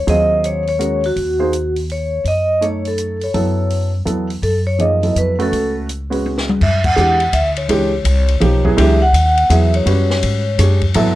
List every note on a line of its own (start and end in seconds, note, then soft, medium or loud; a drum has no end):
0.07 1.12 D#2 medium
0.07 0.62 F#3 medium
0.07 0.62 C4 medium
0.07 0.62 F4 medium
0.07 0.62 G#4 medium
0.07 0.46 D#5 loud
0.07 open hi-hat soft
0.44 0.66 C#5 medium
0.44 closed hi-hat soft
0.67 1.05 C#5 medium
0.67 open hi-hat soft
0.79 1.00 G#3 medium
0.79 1.00 C#4 soft
0.79 1.00 F#4 medium
0.79 1.00 A#4 medium
0.79 closed hi-hat soft
1.04 1.73 F#4 medium
1.04 open hi-hat soft
1.16 2.21 D#2 medium
1.16 open hi-hat soft
1.39 1.51 A#3 medium
1.39 1.51 D#4 soft
1.39 1.51 G#4 medium
1.39 1.51 C5 medium
1.53 closed hi-hat soft
1.76 open hi-hat soft
1.90 2.24 C#5 medium
1.90 open hi-hat soft
2.24 3.30 F#2 medium
2.24 2.64 D#5 medium
2.24 open hi-hat soft
2.61 3.16 A3 soft
2.61 3.16 D#4 soft
2.61 3.16 A4 soft
2.61 3.16 C#5 medium
2.61 2.87 C#5 medium
2.61 closed hi-hat soft
2.85 3.24 A4 medium
2.85 open hi-hat soft
2.98 closed hi-hat soft
3.21 3.91 C#5 medium
3.21 open hi-hat soft
3.34 4.03 F#2 medium
3.34 3.89 F#3 medium
3.34 3.89 B3 medium
3.34 3.89 E4 medium
3.34 3.89 A4 medium
3.34 open hi-hat soft
3.70 open hi-hat soft
4.05 4.40 E2 medium
4.05 4.27 F#3 medium
4.05 4.27 B3 soft
4.05 4.27 E4 soft
4.05 4.27 A4 medium
4.05 closed hi-hat soft
4.30 open hi-hat soft
4.42 5.11 F#2 medium
4.42 4.54 A4 medium
4.42 open hi-hat soft
4.67 4.79 C#5 medium
4.79 5.00 F3 soft
4.79 5.00 A#3 soft
4.79 5.00 D#4 soft
4.79 5.00 G#4 medium
4.79 5.14 D#5 medium
4.79 closed hi-hat soft
5.03 5.34 F#3 soft
5.03 5.35 B3 soft
5.03 5.35 E4 soft
5.03 5.35 A4 soft
5.03 open hi-hat soft
5.15 5.49 F2 medium
5.15 5.41 B4 medium
5.15 closed hi-hat soft
5.39 5.85 A3 medium
5.39 5.86 C#4 medium
5.39 5.86 F#4 medium
5.39 5.75 A4 medium
5.39 5.86 B4 medium
5.39 open hi-hat soft
5.52 6.57 C#2 medium
5.52 open hi-hat soft
5.89 closed hi-hat soft
6.10 6.57 G#3 medium
6.10 6.58 C#4 medium
6.10 6.58 F#4 medium
6.10 6.58 B4 medium
6.10 open hi-hat soft
6.26 high tom soft
6.38 snare soft
6.49 mid tom medium
6.61 6.96 F#2 medium
6.61 6.83 E5 medium
6.61 kick medium
6.61 crash medium
6.84 7.35 F#5 medium
6.84 kick medium
6.84 crash medium
6.96 7.32 E2 medium
6.96 7.17 E3 medium
6.96 7.17 G#3 soft
6.96 7.18 D4 medium
6.96 7.18 G4 medium
6.96 hi-hat pedal medium
7.20 ride soft
7.33 7.68 D2 medium
7.33 7.44 E5 medium
7.33 hi-hat pedal medium
7.33 ride medium
7.56 8.61 C#5 medium
7.56 ride soft
7.69 8.04 C#2 medium
7.69 7.90 E3 medium
7.69 7.90 G#3 medium
7.69 7.90 D4 medium
7.69 7.91 G4 medium
7.69 ride medium
8.04 8.40 C2 medium
8.04 hi-hat pedal medium
8.04 ride medium
8.28 ride soft
8.40 8.77 B1 medium
8.40 8.62 F3 medium
8.40 8.62 A#3 medium
8.40 8.62 D#4 medium
8.40 8.62 G4 medium
8.40 ride medium
8.64 8.96 F#3 medium
8.64 8.96 B3 medium
8.64 8.97 E4 medium
8.64 8.97 G#4 medium
8.64 kick soft
8.77 9.12 C#2 medium
8.77 8.98 E3 medium
8.77 8.98 G#3 medium
8.77 8.98 D4 medium
8.77 8.99 G4 medium
8.77 9.02 E5 medium
8.77 ride medium
9.02 9.52 F#5 medium
9.13 9.48 D#2 medium
9.13 hi-hat pedal soft
9.13 ride medium
9.37 ride soft
9.49 9.85 E2 medium
9.49 10.05 F#3 medium
9.49 10.05 B3 medium
9.49 10.05 E4 medium
9.49 10.05 G#4 medium
9.49 9.72 E5 medium
9.49 hi-hat pedal medium
9.49 ride medium
9.74 10.79 C#5 medium
9.74 ride soft
9.86 10.21 F#2 medium
9.86 10.41 G3 medium
9.86 10.41 C#4 medium
9.86 10.41 F#4 medium
9.86 10.41 B4 medium
9.86 ride medium
10.10 snare soft
10.23 10.58 G#2 medium
10.23 ride medium
10.58 10.93 F#2 medium
10.58 10.79 G#3 medium
10.58 10.79 D4 medium
10.58 10.80 G4 medium
10.58 10.80 C#5 medium
10.58 hi-hat pedal medium
10.58 ride medium
10.81 kick medium
10.81 ride soft
10.94 11.07 A2 medium
10.94 11.15 F#3 medium
10.94 11.15 B3 medium
10.94 11.15 E4 medium
10.94 11.15 A4 medium
10.94 11.15 E5 medium
10.94 ride medium
11.07 11.15 G2 soft